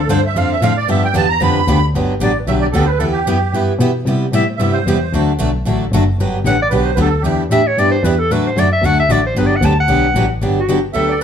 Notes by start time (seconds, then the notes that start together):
0.08 G2 D3 F3 C4 D4 A4 C5
0.26 E5
0.35 F2 D3 F3 C4 D4 A4 F5
0.52 E5
0.61 A2 D3 F3 C4 D4 A4 F5
0.77 D5
0.88 G2 D3 F3 B3 D4 G4 E5
1.05 G5
1.14 E2 D3 F3 B3 D4 G4 A5
1.29 A#5
1.40 F2 D3 F3 B3 D4 G4 B5
1.56 F2
1.68 D2 D3 F3 B3 D4 G4
1.94 G1 D3 F#3 B3 D4 G4
2.20 A1 D3 F#3 B3 D4 G4 D5
2.39 B4
2.47 B1 D3 F#3 B3 D4 G4 E5
2.61 D5
2.72 D2 D3 F#3 B3 D4 G4 A4
2.84 B4 C5
2.98 E2 E3 B3 E4 G4 A4 B4
3.12 G4
3.27 F#2 E3 B3 E4 G4 B4
3.53 G2 E3 B3 E4 G4 B4
3.79 B2 E3 B3 E4 G4 B4
4.06 C3 G3 B3 E4 G4
4.32 A2 C3 G3 B3 E4 G4 E5
4.47 A2 C5
4.57 G2 C3 G3 B3 E4 G4 E5
4.73 C5
4.86 E2 C3 G3 B3 E4 G4
5.13 D2 D3 F#3 A3 D4 F#4 A4
5.39 B1 D3 F#3 A3 D4 F#4 A4
5.65 A1 D3 F#3 A3 D4 F#4 A4
5.92 F#1 D3 F#3 A3 D4 F#4 A4
6.19 G1 D3 F#3 B3 D4 G4
6.45 A1 D3 F#3 B3 D4 G4 F#5
6.62 D5
6.70 B1 D3 F#3 B3 D4 G4 B4
6.83 C5
6.95 D2 D3 F#3 B3 D4 G4 B4
7.01 A4
7.21 E2 E3 G3 B3 D4 E4 G4
7.26 B4
7.50 A2 E3 G3 B3 D4 E4 G4 B4 E5
7.67 C#5
7.77 G2 E3 G3 B3 D4 E4 G4 B4 D5
7.91 C5
8.03 E2 E3 G3 B3 D4 E4 G4 B4
8.19 A4
8.30 A2 D3 F#3 A3 D4 F#4 A4 B4
8.46 C5
8.56 F#2 D3 F#3 A3 D4 F#4 A4 D5
8.73 E5
8.82 D2 D3 F#3 A3 D4 F#4 A4 F#5
9.00 E5
9.09 A1 D3 F#3 A3 D4 F#4 A4 D5
9.26 C5
9.35 G1 D3 F#3 B3 D4 G4 B4
9.46 D5
9.56 F#5
9.62 D2 D3 F#3 B3 D4 G4 A5
9.80 F#5
9.88 B1 D3 F#3 B3 D4 G4
10.15 A1 D3 F#3 B3 D4 G4
10.41 G1 D3 F#3 B3 D4 G4
10.59 F#4
10.69 D3 F#3 B3 D4 G4
10.93 D2 D3 F#3 B3 D4 G4 A4 E5
11.09 D5